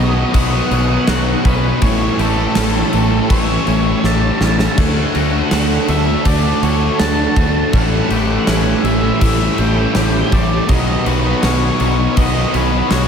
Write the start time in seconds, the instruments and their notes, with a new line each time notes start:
Already playing: fingered electric bass B1, overdriven electric guitar B2 D#3 F#3 B3, distorted electric guitar B2, clean electric guitar D#3 C#4 F#4, ambient pad B4 F#5 C#6 D#6, lead electric guitar D#5
0.00 overdriven electric guitar F#3 B3 D#4
0.16 overdriven electric guitar F#3 B3 D#4
0.33 fingered electric bass B1, overdriven electric guitar B2 F#3 B3, clean electric guitar B3, lead electric guitar F#5, kick, crash
0.54 overdriven electric guitar F#3 B3 D#4
0.70 fingered electric bass B1, distorted electric guitar B2, overdriven electric guitar D#3 F#3 B3 D#4, clean electric guitar C#4, crash
0.90 overdriven electric guitar F#3 B3 D#4
1.07 fingered electric bass B1, overdriven electric guitar B2 D#3 F#3 B3 D#4, clean electric guitar F#4, snare, crash
1.44 fingered electric bass B1, distorted electric guitar B2, overdriven electric guitar D#3 F#3 B3 D#4, clean electric guitar C#4, lead electric guitar B4, kick, crash
1.63 overdriven electric guitar F#3 B3 D#4
1.81 fingered electric bass A1, overdriven electric guitar A2 E3 G3 A3 C#4 E4, clean electric guitar E3, ambient pad A4 G5 E6, lead electric guitar C#5, kick, crash
1.86 distorted electric guitar A3
2.01 overdriven electric guitar G3 C#4 E4
2.19 fingered electric bass A1, distorted electric guitar A2 E3 A3, clean electric guitar G4, lead electric guitar A4, crash
2.37 overdriven electric guitar G3 C#4 E4, distorted electric guitar A3
2.41 distorted electric guitar E3
2.55 fingered electric bass A1, overdriven electric guitar A2 E3 G3 C#4 E4, distorted electric guitar A3, clean electric guitar C#4, snare, crash
2.75 distorted electric guitar E3 A3
2.92 fingered electric bass A1, distorted electric guitar A2, overdriven electric guitar E3 G3 C#4 E4, clean electric guitar E3, crash
2.97 distorted electric guitar A3
3.11 overdriven electric guitar G3 C#4 E4, distorted electric guitar A3
3.15 distorted electric guitar E3
3.29 fingered electric bass A1, overdriven electric guitar A2 E3 A3, clean electric guitar A3, lead electric guitar C#5, kick, crash
3.48 distorted electric guitar E3 A3, overdriven electric guitar G3 C#4 E4
3.65 fingered electric bass A1, distorted electric guitar A2, overdriven electric guitar E3 G3 C#4 E4, clean electric guitar C#4, crash
3.70 distorted electric guitar A3
3.86 distorted electric guitar E3 A3, overdriven electric guitar G3 C#4 E4
4.03 fingered electric bass A1, overdriven electric guitar A2 E3 G3 C#4 E4, distorted electric guitar A3, clean electric guitar G4, lead electric guitar A5, snare
4.40 fingered electric bass A1, distorted electric guitar A2 A3, overdriven electric guitar E3 G3 C#4 E4, clean electric guitar C#4, snare
4.59 overdriven electric guitar G3 C#4 E4, snare
4.77 fingered electric bass D2, overdriven electric guitar D3 A3 D4 F#4, clean electric guitar A3, ambient pad F#5 A5, lead electric guitar F#5, kick, splash, crash
4.96 overdriven electric guitar A3 D4 F#4
5.14 fingered electric bass D2, distorted electric guitar D3 A3 D4, clean electric guitar F#4, crash
5.33 overdriven electric guitar A3 D4 F#4
5.51 fingered electric bass D2, overdriven electric guitar D3 A3 D4 F#4, snare, crash
5.70 distorted electric guitar A3 D4
5.88 fingered electric bass D2, overdriven electric guitar D3 A3 D4 F#4, clean electric guitar A3, lead electric guitar E5, crash
6.06 overdriven electric guitar A3 D4 F#4
6.25 fingered electric bass D2, overdriven electric guitar D3 A3 D4, clean electric guitar A3, lead electric guitar D5, kick, crash
6.43 overdriven electric guitar A3 D4 F#4
6.62 fingered electric bass D2, overdriven electric guitar D3 A3 D4 F#4, lead electric guitar C#5, crash
6.81 overdriven electric guitar A3 D4 F#4
6.99 fingered electric bass D2, overdriven electric guitar D3 A3 D4 F#4, clean electric guitar F#4, lead electric guitar A5, snare, crash
7.36 fingered electric bass D2, overdriven electric guitar D3 A3 D4 F#4, kick, crash
7.55 overdriven electric guitar A3 D4 F#4
7.72 fingered electric bass A1, overdriven electric guitar A2 E3 G3 A3 C#4 E4, clean electric guitar E3, distorted electric guitar A3, ambient pad G4 E6, lead electric guitar F#5, kick, crash
7.91 overdriven electric guitar G3 C#4 E4
8.08 fingered electric bass A1, distorted electric guitar A2 E3 A3, clean electric guitar G4, crash
8.27 distorted electric guitar E3 A3, overdriven electric guitar C#4 E4
8.32 overdriven electric guitar G3
8.47 fingered electric bass A1, overdriven electric guitar A2 E3 G3 C#4 E4, distorted electric guitar A3, clean electric guitar C#4, snare, crash
8.64 distorted electric guitar E3 A3
8.82 fingered electric bass A1, distorted electric guitar A2 A3, overdriven electric guitar E3 G3, clean electric guitar E3, lead electric guitar E5, crash
8.86 overdriven electric guitar C#4 E4
9.01 distorted electric guitar E3 A3, overdriven electric guitar E4
9.05 overdriven electric guitar G3 C#4
9.20 fingered electric bass A1, overdriven electric guitar A2 E3 A3, clean electric guitar A3, lead electric guitar E5, kick, crash
9.37 distorted electric guitar E3 A3, overdriven electric guitar E4
9.41 overdriven electric guitar G3 C#4
9.57 fingered electric bass A1, distorted electric guitar A2 A3, overdriven electric guitar E3 G3 C#4 E4, lead electric guitar G5, crash
9.75 distorted electric guitar A3, overdriven electric guitar C#4 E4
9.79 distorted electric guitar E3, overdriven electric guitar G3
9.95 fingered electric bass A1, overdriven electric guitar A2 E3 G3 C#4 E4, distorted electric guitar A3, clean electric guitar G4, snare, crash
10.31 fingered electric bass A1, distorted electric guitar A2 A3, overdriven electric guitar E3 G3 C#4 E4, lead electric guitar D5, kick, crash
10.52 overdriven electric guitar G3 C#4 E4
10.68 fingered electric bass B1, overdriven electric guitar B2 D#3 F#3 B3, clean electric guitar D#3, ambient pad B4 F#5 C#6 D#6, lead electric guitar D#5, kick, crash
10.72 overdriven electric guitar D#4
10.88 overdriven electric guitar F#3 B3 D#4
11.05 fingered electric bass B1, distorted electric guitar B2 F#3 B3, clean electric guitar F#4, lead electric guitar B4, crash
11.24 overdriven electric guitar F#3 B3 D#4
11.42 fingered electric bass B1, overdriven electric guitar B2 D#3 F#3 B3 D#4, clean electric guitar C#4, lead electric guitar C#5, snare, crash
11.61 distorted electric guitar F#3 B3
11.79 fingered electric bass B1, distorted electric guitar B2, overdriven electric guitar D#3 F#3 B3 D#4, clean electric guitar D#3, lead electric guitar C#5, crash
11.98 overdriven electric guitar F#3 B3 D#4
12.16 fingered electric bass B1, overdriven electric guitar B2 F#3 B3, clean electric guitar B3, lead electric guitar D#5, kick, crash
12.35 overdriven electric guitar F#3 B3 D#4
12.53 fingered electric bass B1, distorted electric guitar B2, overdriven electric guitar D#3 F#3 B3 D#4, clean electric guitar C#4, lead electric guitar B4, crash
12.72 overdriven electric guitar F#3 B3 D#4
12.90 fingered electric bass B1, overdriven electric guitar B2 D#3 F#3 B3 D#4, clean electric guitar F#4, lead electric guitar C#5, snare, crash